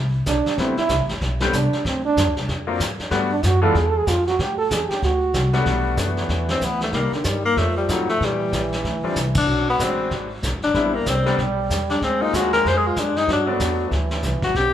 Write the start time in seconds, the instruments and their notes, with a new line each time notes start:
Already playing: upright bass C2
0.26 upright bass B1, trombone D4, kick, snare, hi-hat pedal
0.46 muted upright bass stroke, snare
0.57 upright bass A1, grand piano G3 A3 B3 C4 E4, trombone C4, brush sweep, kick, snare
0.77 trombone E4, muted upright bass stroke, snare
0.89 upright bass C2, kick, snare, hi-hat pedal
1.00 upright bass A1
1.09 upright bass G1, snare
1.21 upright bass B1, brush sweep, kick, snare
1.40 grand piano G3 A3 B3 C4 G4, snare
1.53 upright bass C2, trombone D4, kick, snare, hi-hat pedal
1.72 muted upright bass stroke, snare
1.85 upright bass D2, trombone C4, brush sweep, kick, snare
2.05 trombone D4
2.17 upright bass F#2, kick, snare, hi-hat pedal
2.26 upright bass D2
2.37 upright bass C2, snare
2.48 upright bass F2, brush sweep, kick, snare
2.67 grand piano F#3 A#3 C4 D4 F4
2.80 upright bass G#2, kick, snare, hi-hat pedal
2.99 muted upright bass stroke, snare
3.11 upright bass G2, grand piano G3 A3 B3 D4 F#4, brush sweep, kick, snare
3.32 trombone D4
3.43 upright bass F#2, trombone F#4, kick, snare, hi-hat pedal
3.62 grand piano E3 G#3 B3 D4 F4, trombone A4
3.74 upright bass E2, trombone G#4, brush sweep, kick, snare
3.88 trombone A4
3.97 trombone G#4
4.07 upright bass F2, trombone F4, kick, snare, hi-hat pedal
4.27 trombone F#4, snare
4.39 upright bass A2, trombone G4, brush sweep, kick, snare
4.58 trombone A4
4.70 upright bass E2, trombone G#4, kick, snare, hi-hat pedal
4.89 trombone G4, muted upright bass stroke, snare
5.02 upright bass D2, trombone F#4, brush sweep, kick, snare
5.33 upright bass C2, kick, snare, hi-hat pedal
5.53 grand piano G3 A3 B3 D4 F#4, snare
5.65 upright bass B1, trombone E3, brush sweep, kick, snare
5.97 upright bass F#2, grand piano A3 B3 D4 F#4, kick, snare, hi-hat pedal
6.17 snare
6.29 upright bass E2, brush sweep, kick, snare
6.49 tenor saxophone C4, snare
6.60 upright bass D2, tenor saxophone B3, kick, snare, hi-hat pedal
6.81 tenor saxophone A3, snare
6.92 upright bass C2, trombone D#3, grand piano G3 A#3 D4 D#4, tenor saxophone A#3, brush sweep, kick, snare
7.12 tenor saxophone D3, muted upright bass stroke, snare
7.24 upright bass G2, tenor saxophone G3, kick, snare, hi-hat pedal
7.45 tenor saxophone A#3
7.57 upright bass F2, trombone F3, tenor saxophone A3, brush sweep, kick, snare
7.77 tenor saxophone G3
7.89 upright bass A2, tenor saxophone F#3, grand piano G3 A3 C4 D#4, kick, snare, hi-hat pedal
8.09 tenor saxophone A3, snare
8.20 upright bass A#2, trombone E3, brush sweep, kick, snare
8.25 tenor saxophone G3
8.52 upright bass A#1, kick, snare, hi-hat pedal
8.72 snare
8.84 upright bass D2, brush sweep, kick, snare
9.03 grand piano F3 G3 C4 D4, muted upright bass stroke
9.16 upright bass C2, kick, snare, hi-hat pedal
9.35 tenor saxophone D4, kick, ride
9.47 upright bass B1, trombone F#3, brush sweep
9.70 tenor saxophone B3
9.79 upright bass A1, grand piano G#3 C4 D4 B4, kick, snare, hi-hat pedal
9.83 tenor saxophone C4
10.11 upright bass G#1, brush sweep, kick, snare
10.42 upright bass B1, kick, snare, hi-hat pedal
10.54 upright bass G#1
10.62 upright bass E1, tenor saxophone D4, snare
10.74 upright bass A1, grand piano G3 B3 C4 E4, trombone G3, brush sweep, kick, snare
10.94 tenor saxophone A#3
11.06 upright bass C2, tenor saxophone C4, kick, snare, hi-hat pedal
11.26 grand piano G3 B3 C4 D4, snare
11.38 upright bass B1, brush sweep, kick, snare
11.69 upright bass E2, kick, snare, hi-hat pedal
11.89 tenor saxophone D4, snare
12.01 upright bass D2, trombone G#3, tenor saxophone C4, brush sweep, kick, snare
12.21 grand piano F#3 A#3 C4 F4, tenor saxophone D#4
12.33 upright bass D#2, tenor saxophone F#4, kick, snare, hi-hat pedal
12.53 tenor saxophone A#4, snare
12.65 upright bass F2, tenor saxophone C5, brush sweep, kick, snare
12.77 tenor saxophone G#4
12.87 tenor saxophone F4
12.96 upright bass F#2, tenor saxophone D4, kick, snare, hi-hat pedal
13.16 tenor saxophone D#4, snare
13.27 upright bass G2, trombone F#3, brush sweep, kick, snare
13.33 tenor saxophone D4
13.46 grand piano F#3 A3 B3 D4
13.60 upright bass E2, kick, snare, hi-hat pedal
13.90 upright bass D2, trombone E3, brush sweep, kick, snare
14.11 snare
14.23 upright bass C2, kick, snare, hi-hat pedal
14.32 upright bass B1
14.42 upright bass G1, tenor saxophone F#4, kick, snare
14.54 upright bass B1, trombone C3, tenor saxophone G4, brush sweep, kick, snare